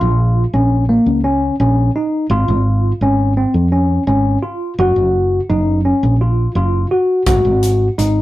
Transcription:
0.00 0.44 A#1 medium
0.00 0.43 F4 medium
0.53 0.97 A#1 medium
0.53 0.84 C#4 medium
0.89 1.19 A#3 medium
1.06 1.50 C#2 medium
1.24 1.55 C#4 medium
1.60 1.89 A#1 medium
1.60 1.90 C#4 medium
1.96 2.26 D#4 medium
2.30 2.44 G#1 medium
2.30 2.91 F4 medium
2.48 2.91 G#1 medium
3.01 3.44 G#1 medium
3.01 3.32 C#4 medium
3.37 3.67 C4 medium
3.54 3.97 F2 medium
3.72 4.02 C#4 medium
4.07 4.36 G#1 medium
4.07 4.38 C#4 medium
4.43 4.73 F4 medium
4.78 4.93 F#1 medium
4.78 5.39 F#4 medium
4.96 5.39 F#1 medium
5.50 5.93 F#1 medium
5.50 5.80 D#4 medium
5.85 6.15 C#4 medium
6.03 6.46 A#1 medium
6.21 6.51 F4 medium
6.55 6.84 F#1 medium
6.55 6.86 F4 medium
6.91 7.21 F#4 medium
7.26 7.41 G#1 medium
7.26 7.87 F#4 medium
7.26 kick loud
7.26 closed hi-hat medium
7.45 7.88 G#1 medium
7.63 closed hi-hat medium
7.98 8.22 G#1 medium
7.98 8.22 D#4 medium
7.98 closed hi-hat medium

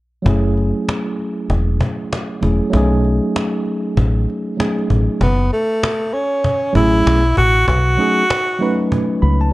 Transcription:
0.22 0.71 F#1 loud
0.22 2.37 F#3 medium
0.22 2.37 A3 medium
0.22 2.38 C#4 medium
0.22 cajon bass loud
0.27 2.39 E4 medium
0.27 2.40 G#4 medium
0.57 cajon slap soft
0.89 cajon slap medium
1.19 cajon slap soft
1.50 1.78 E1 loud
1.50 cajon bass medium
1.81 cajon bass medium
2.13 cajon slap loud
2.41 2.60 E1 medium
2.41 2.69 F#3 soft
2.41 2.70 A3 soft
2.41 2.72 C#4 soft
2.41 2.74 E4 soft
2.41 2.74 G#4 medium
2.41 cajon bass medium
2.70 3.19 B1 loud
2.70 4.53 F#3 medium
2.70 4.54 A3 medium
2.70 4.55 C#4 medium
2.70 cajon bass loud
2.75 4.56 D#4 medium
2.75 4.57 G#4 medium
3.04 cajon slap soft
3.36 cajon slap medium
3.66 cajon slap soft
3.97 4.25 A1 medium
3.97 cajon bass medium
4.30 cajon slap soft
4.57 5.20 F#3 soft
4.57 5.20 A3 soft
4.57 5.21 C#4 soft
4.57 5.21 D#4 soft
4.57 5.21 G#4 medium
4.57 cajon slap loud
4.79 cajon slap soft
4.90 5.07 A1 medium
4.90 cajon bass medium
5.21 5.49 F#1 loud
5.21 5.51 B3 medium
5.21 cajon bass loud
5.52 6.15 A3 medium
5.52 cajon slap soft
5.83 cajon slap loud
6.14 6.76 C#4 medium
6.14 cajon slap soft
6.44 cajon bass medium
6.73 7.04 A1 medium
6.73 7.20 F#3 medium
6.73 7.20 A3 medium
6.73 7.21 C#4 medium
6.73 7.21 E4 medium
6.73 7.34 E4 medium
6.73 7.22 G#4 medium
6.73 cajon bass medium
7.06 7.35 B1 medium
7.06 cajon slap medium
7.37 7.66 A1 medium
7.37 7.66 F#4 loud
7.37 cajon bass medium
7.68 7.96 B1 loud
7.68 8.88 F#4 loud
7.68 cajon bass loud
7.97 8.22 F#3 medium
7.97 8.22 A3 medium
7.97 8.22 C#4 medium
7.97 8.23 D#4 medium
7.97 8.23 G#4 medium
7.97 cajon slap soft
8.30 cajon slap loud
8.59 9.48 F#3 medium
8.59 9.48 A3 medium
8.59 9.49 C#4 medium
8.59 9.49 D#4 medium
8.59 9.49 B4 medium
8.59 cajon slap soft
8.92 cajon bass medium
9.22 9.53 C#2 medium
9.22 9.40 B5 medium
9.22 cajon slap soft
9.41 9.53 A5 medium

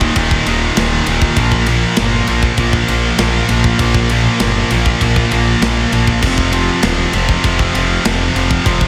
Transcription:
0.00 0.10 D#1 loud
0.00 0.15 D#2 medium
0.00 0.16 A#2 medium
0.00 0.16 D#3 loud
0.00 kick medium
0.16 0.40 D#1 medium
0.16 0.45 D#2 medium
0.16 0.46 A#2 loud
0.16 0.46 D#3 loud
0.16 kick loud
0.16 ride loud
0.31 kick medium
0.46 0.70 D#1 medium
0.46 0.76 D#2 medium
0.46 0.76 A#2 medium
0.46 0.77 D#3 loud
0.46 ride medium
0.77 1.01 D#1 loud
0.77 1.06 D#2 loud
0.77 1.07 A#2 loud
0.77 1.07 D#3 loud
0.77 snare loud
0.77 ride loud
1.07 1.31 D#1 medium
1.07 1.36 D#2 medium
1.07 1.36 A#2 loud
1.07 1.36 D#3 loud
1.07 ride medium
1.22 kick loud
1.36 1.85 A#1 loud
1.36 1.67 A#2 loud
1.36 1.68 F3 loud
1.36 1.68 A#3 loud
1.36 kick loud
1.36 ride loud
1.52 kick loud
1.66 1.98 A#2 loud
1.66 1.99 F3 loud
1.66 1.99 A#3 loud
1.66 ride medium
1.97 2.22 G1 loud
1.97 2.28 A#2 loud
1.97 2.28 F3 loud
1.97 2.29 A#3 loud
1.97 snare loud
1.97 ride loud
2.27 2.52 A#1 loud
2.27 2.58 A#2 medium
2.27 2.59 F3 medium
2.27 2.59 A#3 loud
2.27 ride medium
2.43 kick medium
2.57 2.82 A#1 medium
2.57 2.88 A#2 loud
2.57 2.89 F3 loud
2.57 2.89 A#3 loud
2.57 kick medium
2.57 ride loud
2.73 kick medium
2.88 3.12 A#1 medium
2.88 3.19 A#2 medium
2.88 3.20 F3 medium
2.88 3.19 A#3 loud
2.88 ride medium
3.19 3.43 A#1 loud
3.19 3.49 A#2 loud
3.19 3.50 F3 loud
3.19 3.50 A#3 loud
3.19 snare loud
3.19 ride loud
3.49 3.73 A#1 loud
3.49 3.80 A#2 loud
3.49 3.81 F3 loud
3.49 3.81 A#3 loud
3.49 ride medium
3.64 kick loud
3.79 4.27 A#1 loud
3.79 4.10 A#2 loud
3.79 4.11 F3 loud
3.79 4.11 A#3 loud
3.79 kick loud
3.79 ride loud
3.94 kick loud
4.09 4.40 A#2 loud
4.09 4.42 F3 medium
4.09 4.41 A#3 loud
4.09 ride medium
4.40 4.64 G1 medium
4.40 4.71 A#2 loud
4.40 4.72 F3 loud
4.40 4.71 A#3 medium
4.40 snare loud
4.40 ride loud
4.71 4.95 A#1 loud
4.71 5.01 A#2 loud
4.71 5.02 F3 loud
4.71 5.02 A#3 loud
4.71 ride medium
4.86 kick medium
5.01 5.25 A#1 loud
5.01 5.31 A#2 loud
5.01 5.32 F3 medium
5.01 5.32 A#3 loud
5.01 kick loud
5.01 ride loud
5.16 kick medium
5.31 5.56 A#1 loud
5.31 5.61 A#2 medium
5.31 5.62 F3 medium
5.31 5.61 A#3 medium
5.31 ride medium
5.62 5.86 A#1 loud
5.62 5.90 A#2 loud
5.62 5.91 F3 loud
5.62 5.91 A#3 loud
5.62 snare loud
5.62 ride loud
5.91 6.24 A#1 medium
5.91 6.20 A#2 medium
5.91 6.22 F3 medium
5.91 6.21 A#3 loud
5.91 ride medium
6.07 kick medium
6.22 6.70 F1 loud
6.22 6.51 F2 loud
6.22 6.52 C3 loud
6.22 6.53 F3 loud
6.22 kick loud
6.22 crash loud
6.38 kick loud
6.52 6.83 F2 medium
6.52 6.82 C3 loud
6.52 6.83 F3 loud
6.52 ride medium
6.82 7.07 D#1 loud
6.82 7.13 F2 medium
6.82 7.13 C3 loud
6.82 7.14 F3 loud
6.82 snare loud
6.82 ride loud
7.13 7.37 F1 loud
7.13 7.42 F2 medium
7.13 7.43 C3 medium
7.13 7.44 F3 medium
7.13 ride medium
7.29 kick medium
7.43 7.68 F1 medium
7.43 7.73 F2 medium
7.43 7.74 C3 loud
7.43 7.74 F3 loud
7.43 kick loud
7.43 ride loud
7.59 kick medium
7.74 7.98 F1 medium
7.74 8.03 F2 medium
7.74 8.03 C3 medium
7.74 8.04 F3 loud
7.74 ride medium
8.04 8.29 F1 loud
8.04 8.33 F2 medium
8.04 8.34 C3 loud
8.04 8.34 F3 loud
8.04 snare loud
8.04 ride loud
8.34 8.59 F1 medium
8.34 8.63 F2 medium
8.34 8.64 C3 loud
8.34 8.65 F3 loud
8.34 ride medium
8.51 kick loud
8.65 8.88 F1 loud
8.65 8.88 F2 loud
8.65 8.88 C3 loud
8.65 8.88 F3 loud
8.65 kick loud
8.65 ride loud
8.81 kick loud

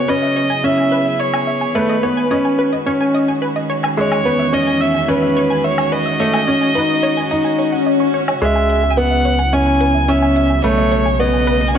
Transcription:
0.00 1.75 C#3 medium
0.00 0.42 C#4 medium
0.00 0.42 F#4 medium
0.00 0.42 B4 medium
0.00 0.11 C#5 medium
0.08 1.75 F#3 medium
0.08 0.47 C#4 medium
0.08 0.18 B4 medium
0.08 0.66 D#5 medium
0.22 0.35 E5 medium
0.36 0.46 C#5 medium
0.50 2.64 B3 medium
0.50 1.75 E4 medium
0.50 2.64 G#4 medium
0.50 0.63 G#5 medium
0.64 1.02 C#4 medium
0.64 0.74 E5 medium
0.64 1.22 E5 medium
0.78 0.87 G#5 medium
0.92 1.01 B4 medium
1.06 1.19 E5 medium
1.20 1.29 C#5 medium
1.20 1.77 C#5 medium
1.34 1.47 G#5 medium
1.34 low woodblock medium
1.47 1.57 E5 medium
1.61 1.71 G#5 medium
1.75 8.42 D#3 medium
1.75 1.94 A3 medium
1.75 1.85 B4 medium
1.75 2.87 B4 medium
1.89 8.42 G#3 medium
1.89 2.02 D#5 medium
2.03 2.22 B3 medium
2.03 2.13 C#5 medium
2.17 2.30 G#5 medium
2.31 2.69 C#4 medium
2.31 2.41 D#5 medium
2.45 9.31 F#4 medium
2.45 2.54 G#5 medium
2.59 2.68 B4 medium
2.73 9.31 C#4 medium
2.73 2.86 D#5 medium
2.86 3.25 C#4 medium
2.86 2.96 C#5 medium
3.01 3.14 G#5 medium
3.14 3.24 D#5 medium
3.28 3.38 G#5 medium
3.42 3.51 B4 medium
3.56 3.69 D#5 medium
3.70 3.79 C#5 medium
3.83 3.97 G#5 medium
3.83 low woodblock medium
3.97 6.20 E2 medium
3.97 4.16 G#3 medium
3.97 4.56 C#5 medium
3.97 4.07 E5 medium
4.11 4.21 G#5 medium
4.11 low woodblock soft
4.25 4.44 B3 medium
4.25 4.35 B4 medium
4.39 4.52 E5 medium
4.53 4.91 C#4 medium
4.53 4.63 C#5 medium
4.53 4.83 D#5 medium
4.67 4.80 G#5 medium
4.80 4.90 E5 medium
4.80 5.11 E5 medium
4.94 5.04 G#5 medium
5.08 5.47 C#4 medium
5.08 5.18 B4 medium
5.08 5.66 B4 medium
5.22 5.36 E5 medium
5.37 5.46 C#5 medium
5.50 5.63 G#5 medium
5.64 5.94 C#5 medium
5.64 5.74 E5 medium
5.78 5.88 G#5 medium
5.78 low woodblock medium
5.92 6.02 B4 medium
5.92 7.87 D#5 medium
6.06 6.19 E5 medium
6.20 6.39 A3 medium
6.20 6.29 C#5 medium
6.33 6.47 G#5 loud
6.33 low woodblock soft
6.47 6.67 C#4 medium
6.47 6.57 D#5 medium
6.61 6.71 G#5 medium
6.75 7.13 D#4 medium
6.75 6.85 B4 loud
6.89 7.02 D#5 medium
7.03 7.13 C#5 medium
7.17 7.30 G#5 medium
7.31 7.69 D#4 medium
7.31 7.41 D#5 medium
7.31 swell medium
7.45 7.54 G#5 medium
7.59 7.68 C#5 medium
7.73 7.86 F#5 medium
7.87 7.96 D#5 medium
8.00 8.10 C#6 medium
8.14 8.27 C#5 medium
8.28 8.38 C#5 medium
8.28 low woodblock medium
8.42 10.61 C#2 medium
8.42 11.78 C#3 medium
8.42 8.80 G#3 medium
8.42 8.51 C#5 medium
8.42 8.92 E5 medium
8.42 closed hi-hat soft
8.42 riser medium
8.56 8.69 G#5 loud
8.70 8.79 E5 medium
8.70 closed hi-hat medium
8.77 11.78 B3 medium
8.84 8.93 G#5 medium
8.91 9.00 G#5 medium
8.97 9.35 B3 medium
8.97 9.07 B4 medium
8.97 9.55 F#5 medium
9.05 11.78 F#3 medium
9.11 9.24 E5 medium
9.25 9.35 C#5 medium
9.25 closed hi-hat medium
9.39 10.64 E4 medium
9.39 9.52 G#5 medium
9.39 closed hi-hat soft
9.53 9.91 C#4 medium
9.53 9.62 E5 medium
9.53 10.10 G#5 medium
9.53 closed hi-hat soft
9.67 9.76 G#5 medium
9.81 9.90 B4 medium
9.81 closed hi-hat medium
9.94 10.08 E5 medium
10.08 10.47 C#4 medium
10.08 10.18 C#5 medium
10.08 10.64 E5 medium
10.08 closed hi-hat soft
10.22 10.36 G#5 loud
10.36 10.46 E5 medium
10.36 closed hi-hat medium
10.50 10.60 G#5 medium
10.64 11.78 B1 medium
10.64 11.02 A3 medium
10.64 10.74 B4 medium
10.64 11.22 C#5 medium
10.64 closed hi-hat soft
10.78 10.91 D#5 medium
10.92 11.01 C#5 medium
10.92 closed hi-hat medium
11.06 11.19 G#5 medium
11.19 11.58 B3 medium
11.19 11.29 D#5 medium
11.19 11.70 D#5 medium
11.33 11.43 G#5 medium
11.47 11.57 B4 loud
11.47 closed hi-hat medium
11.61 11.78 C#4 medium
11.61 11.75 D#5 medium
11.61 closed hi-hat soft
11.68 11.77 G#5 medium
11.75 11.78 C#4 medium
11.75 closed hi-hat soft

